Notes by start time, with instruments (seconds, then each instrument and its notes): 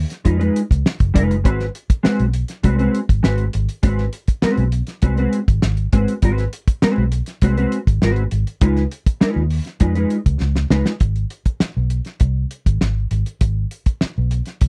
0.10 snare, closed hi-hat
0.25 fingered electric bass F2, clean electric guitar G#3 D#4 F4 B4, kick, closed hi-hat
0.39 clean electric guitar G#3 D#4 F4 B4, closed hi-hat
0.56 closed hi-hat
0.71 fingered electric bass C#2, kick, closed hi-hat
0.86 snare
1.00 fingered electric bass F#1, kick, closed hi-hat
1.14 fingered electric bass F1, clean electric guitar G#3 D#4 F4 B4, kick, closed hi-hat
1.30 fingered electric bass F#1, closed hi-hat
1.44 fingered electric bass G#1, clean electric guitar G#3 C4 F#4 B4, kick, closed hi-hat
1.60 snare, closed hi-hat
1.75 closed hi-hat
1.90 muted fingered electric bass stroke, kick, closed hi-hat
2.03 clean electric guitar G#3 C4 F#4 B4, muted fingered electric bass stroke, snare
2.20 fingered electric bass B1, closed hi-hat
2.34 closed hi-hat
2.48 snare, closed hi-hat
2.63 fingered electric bass C2, clean electric guitar G#3 C4 F#4 B4, kick, closed hi-hat
2.78 clean electric guitar G#3 C4 F#4 B4, closed hi-hat
2.95 closed hi-hat
3.09 fingered electric bass G#1, kick, closed hi-hat
3.23 fingered electric bass G#1, clean electric guitar G#3 C4 F#4 B4, snare
3.38 closed hi-hat
3.53 fingered electric bass G#1, closed hi-hat
3.69 closed hi-hat
3.83 fingered electric bass G#1, clean electric guitar G#3 C4 F#4 B4, kick, closed hi-hat
3.98 snare
4.13 closed hi-hat
4.28 muted fingered electric bass stroke, kick, closed hi-hat
4.42 clean electric guitar G#3 C4 F#4 B4, muted fingered electric bass stroke, snare
4.57 fingered electric bass B1, closed hi-hat
4.72 closed hi-hat
4.87 snare, closed hi-hat
5.02 fingered electric bass C2, clean electric guitar G#3 C4 F#4 B4, kick, closed hi-hat
5.17 clean electric guitar G#3 C4 F#4 B4, closed hi-hat
5.33 closed hi-hat
5.48 fingered electric bass G#1, kick, closed hi-hat
5.62 fingered electric bass G#1, snare
5.77 closed hi-hat
5.93 fingered electric bass G#1, clean electric guitar G#3 C4 F#4 B4, kick, closed hi-hat
6.08 closed hi-hat
6.22 fingered electric bass G#1, clean electric guitar G#3 C4 F#4 B4, kick, closed hi-hat
6.38 snare, closed hi-hat
6.53 closed hi-hat
6.68 muted fingered electric bass stroke, kick, closed hi-hat
6.82 clean electric guitar G#3 C4 F#4 B4, muted fingered electric bass stroke, snare
6.98 fingered electric bass B1
7.12 closed hi-hat
7.26 snare, closed hi-hat
7.42 fingered electric bass C2, clean electric guitar G#3 C4 F#4 B4, kick, closed hi-hat
7.57 clean electric guitar G#3 C4 F#4 B4, closed hi-hat
7.72 closed hi-hat
7.87 fingered electric bass G#1, kick, closed hi-hat
8.02 fingered electric bass G#1, clean electric guitar G#3 C4 F#4 B4, snare
8.16 closed hi-hat
8.31 fingered electric bass G#1, closed hi-hat
8.47 closed hi-hat
8.61 fingered electric bass C#2, clean electric guitar G#3 D#4 F4 B4, kick, closed hi-hat
8.76 snare, closed hi-hat
8.91 closed hi-hat
9.06 muted fingered electric bass stroke, kick, closed hi-hat
9.21 clean electric guitar G#3 D#4 F4 B4, muted fingered electric bass stroke, snare
9.36 fingered electric bass D#2
9.50 open hi-hat
9.65 snare, closed hi-hat
9.80 fingered electric bass F2, clean electric guitar G#3 D#4 F4 B4, kick, closed hi-hat
9.95 clean electric guitar G#3 D#4 F4 B4, closed hi-hat
10.10 closed hi-hat
10.26 fingered electric bass C#2, kick, closed hi-hat
10.40 fingered electric bass C#2, snare
10.56 snare
10.70 fingered electric bass C#2, clean electric guitar G#3 D#4 F4 B4, snare
10.86 snare
11.00 fingered electric bass G#1, kick, closed hi-hat
11.16 closed hi-hat
11.30 closed hi-hat
11.46 muted fingered electric bass stroke, kick, closed hi-hat
11.60 muted fingered electric bass stroke, snare
11.77 fingered electric bass B1
11.90 closed hi-hat
12.05 snare, closed hi-hat
12.20 fingered electric bass C2, kick, closed hi-hat
12.51 closed hi-hat
12.66 fingered electric bass G#1, kick, closed hi-hat
12.81 fingered electric bass G#1, snare
13.11 fingered electric bass G#1, closed hi-hat
13.26 closed hi-hat
13.41 fingered electric bass G#1, kick, closed hi-hat
13.71 closed hi-hat
13.86 muted fingered electric bass stroke, kick, closed hi-hat
14.01 muted fingered electric bass stroke, snare
14.18 fingered electric bass B1
14.31 closed hi-hat
14.46 snare, closed hi-hat
14.61 fingered electric bass C2, kick, closed hi-hat